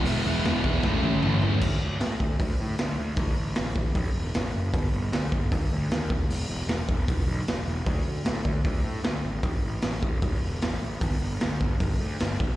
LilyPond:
<<
  \new Staff \with { instrumentName = "Distorted electric guitar" } { \time 4/4 \key a \major \tempo 4 = 153 <e gis b e'>8 <e gis b e'>8 <e gis b e'>8 <e gis b e'>8 <a, e a cis' e'>8 <a, e a cis' e'>8 <a, e a cis' e'>8 <a, e a cis' e'>8 | \key g \lydian r1 | r1 | r1 |
r1 | r1 | r1 | r1 | }
  \new Staff \with { instrumentName = "Picked electric bass" } { \clef bass \time 4/4 \key a \major e,,8 e,,8 e,,8 e,,8 a,,8 a,,8 a,,8 e,8 | \key g \lydian d,8 d,8 a,8 d,8 d,8 a,8 d,8 d,8 | a,,8 a,,8 a,,8 a,,8 a,,8 e,,8 a,,8 fis,,8 | g,,8 g,,8 d,8 g,,8 g,,8 d,8 ees,8 e,,8 |
e,,8 e,,8 e,,8 e,,8 e,,8 b,,8 e,,8 e,,8 | d,8 d,8 a,8 d,8 d,8 a,8 d,8 gis,,8 | a,,8 a,,8 a,,8 a,,8 a,,8 e,,8 a,,8 a,,8 | g,,8 g,,8 d,8 g,,8 g,,8 d,8 g,,8 e,,8 | }
  \new DrumStaff \with { instrumentName = "Drums" } \drummode { \time 4/4 hho4 <hho sn>8 bd8 <bd sn>8 tommh8 toml8 tomfh8 | <cymc bd>4 <hho sn>8 bd8 <hho bd>4 <hho sn>4 | <hho bd>4 <hho sn>8 bd8 <hho bd>4 <hho sn>4 | <hho bd>4 <hho sn>8 bd8 <hho bd>4 <hho sn>8 bd8 |
hho4 <hho sn>8 bd8 <hho bd>4 <hho sn>4 | <hho bd>4 <hho sn>8 bd8 <hho bd>4 <hho sn>4 | <hho bd>4 <hho sn>8 bd8 <hho bd>4 <hho sn>4 | <hho bd>4 <hho sn>8 bd8 <hho bd>4 <hho sn>8 bd8 | }
>>